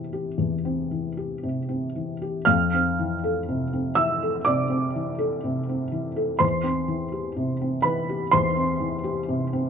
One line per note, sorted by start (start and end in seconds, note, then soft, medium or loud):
0.00 0.35 E2 soft
0.00 1.43 C3 soft
0.00 0.91 E3 soft
0.00 0.65 C4 soft
0.00 0.13 G4 soft
0.00 1.44 C5 medium
0.13 0.54 G4 soft
0.38 2.44 E2 soft
0.65 1.07 C4 soft
0.91 1.33 E3 soft
1.17 1.59 G4 soft
1.43 1.85 C3 soft
1.69 2.11 C4 soft
1.96 2.38 E3 soft
2.22 2.48 G4 soft
2.45 4.43 F2 medium
2.45 3.94 F5 medium
2.45 3.97 F6 medium
2.74 3.15 C4 soft
2.99 3.40 E3 soft
3.24 3.64 A4 soft
3.49 3.89 C3 soft
3.73 4.13 C4 soft
3.95 4.37 E3 soft
3.95 4.43 E5 medium
3.95 4.46 E6 medium
4.22 4.62 A4 soft
4.45 4.86 C3 soft
4.45 6.38 D5 medium
4.45 6.41 D6 medium
4.70 5.10 C4 soft
4.96 5.35 E3 soft
5.18 5.59 A4 soft
5.44 5.84 C3 soft
5.69 6.08 C4 soft
5.92 6.32 E3 soft
6.16 6.42 A4 soft
6.39 8.27 E2 soft
6.39 7.80 C5 medium
6.39 7.83 C6 medium
6.63 7.03 C4 soft
6.88 7.27 E3 soft
7.12 7.51 G4 soft
7.37 7.75 C3 soft
7.61 7.99 C4 soft
7.82 8.23 E3 soft
7.82 8.29 B4 medium
7.82 8.31 B5 medium
8.09 8.47 G4 soft
8.31 9.70 E2 soft
8.31 9.70 C5 medium
8.31 9.70 C6 medium
8.56 8.95 C4 soft
8.80 9.19 E3 soft
9.04 9.43 G4 soft
9.29 9.69 C3 soft
9.53 9.70 C4 soft